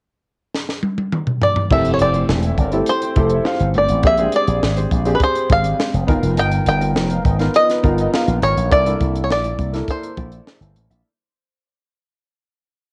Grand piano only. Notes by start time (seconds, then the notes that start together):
1.71 C4 E4 G4 A4
2.72 C4 E4 G4 A4
3.16 C4 E4 G4 A4
4.03 C4 D4 G4 G#4
4.18 C4 D4 G4 G#4
5.05 C4 D4 G4 G#4
6.07 B3 D#4 F4 A#4
7.39 B3 D#4 F4 A#4
7.83 B3 D#4 F4 A#4
8.70 A#3 D4 E4 A4
8.86 A#3 D4 E4 A4
9.73 A#3 D4 E4 A4